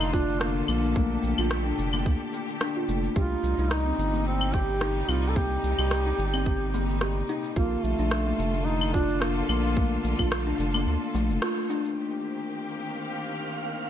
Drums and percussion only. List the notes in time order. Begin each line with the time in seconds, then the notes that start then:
0.01 claves
0.13 kick, shaker
0.29 shaker
0.41 cross-stick, shaker
0.68 claves, shaker
0.83 shaker
0.96 kick, shaker
1.23 shaker
1.38 claves, shaker
1.51 cross-stick, shaker
1.78 shaker
1.93 claves, shaker
2.06 kick, shaker
2.33 shaker
2.49 shaker
2.61 cross-stick, shaker
2.89 shaker
3.04 shaker
3.16 kick, shaker
3.43 shaker
3.58 shaker
3.71 cross-stick, shaker
3.99 shaker
4.14 shaker
4.27 shaker
4.41 claves
4.54 kick, shaker
4.69 shaker
4.81 cross-stick, shaker
5.09 claves, shaker
5.24 shaker
5.36 kick, shaker
5.64 shaker
5.78 claves, shaker
5.91 cross-stick, shaker
6.19 shaker
6.34 claves, shaker
6.46 kick, shaker
6.74 shaker
6.89 shaker
7.01 cross-stick, shaker
7.29 shaker
7.44 shaker
7.56 kick, shaker
7.84 shaker
7.99 shaker
8.11 cross-stick, shaker
8.39 shaker
8.54 shaker
8.66 shaker
8.81 claves
8.94 kick, shaker
9.09 shaker
9.22 cross-stick, shaker
9.49 claves, shaker
9.64 shaker
9.77 kick, shaker
10.04 shaker
10.19 kick, claves, shaker
10.32 cross-stick, shaker
10.59 shaker
10.74 claves, shaker
10.87 shaker
11.15 shaker
11.30 shaker
11.42 cross-stick, shaker
11.70 shaker
11.85 shaker